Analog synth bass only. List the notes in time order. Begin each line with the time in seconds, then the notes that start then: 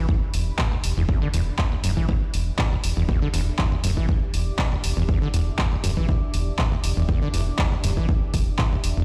0.34 E1
0.84 E1
0.97 E1
1.34 E1
1.84 D1
2.34 E1
2.84 E1
2.97 E1
3.34 E1
3.84 D1
4.34 E1
4.84 E1
4.97 E1
5.34 E1
5.84 D1
6.34 E1
6.84 E1
6.97 E1
7.34 E1
7.84 D1
8.34 E1
8.84 E1
8.97 E1